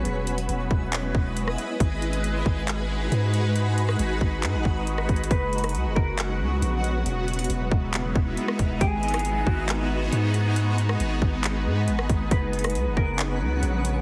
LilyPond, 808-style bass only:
\new Staff \with { instrumentName = "808-style bass" } { \clef bass \time 4/4 \key gis \minor \tempo 4 = 137 e,,4 e,,8 e,,4 e,,4 r8 | gis,,4. gis,,4. gis,4~ | gis,4 gis,,8 gis,,8 gis,16 gis,,16 gis,,4 gis,,8 | fis,,4 cis,16 fis,,16 fis,,4 cis,8 ais,,4 |
e,,4 e,,8 e,,4 e,,8 r8 e,,8 | gis,,4. gis,,4. gis,4~ | gis,4 gis,,8 gis,,4 gis,8 gis,,8 gis,,8 | fis,,4 cis,16 fis,,16 fis,,4 cis,8 ais,,4 | }